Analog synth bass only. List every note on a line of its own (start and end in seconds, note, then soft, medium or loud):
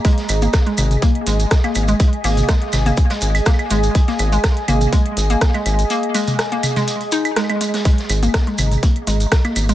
0.29 0.48 G#1 loud
0.78 0.97 G#1 medium
1.27 1.46 G#1 medium
1.76 1.94 G#1 medium
2.24 2.43 G#1 loud
2.73 2.92 G#1 medium
3.22 3.41 G#1 medium
3.71 3.89 G#1 medium
4.19 4.38 G#1 loud
4.68 4.87 G#1 medium
5.17 5.36 G#1 medium
5.66 5.84 G#1 medium
8.10 8.28 G#1 loud
8.59 8.77 G#1 medium
9.07 9.26 G#1 medium
9.56 9.74 G#1 medium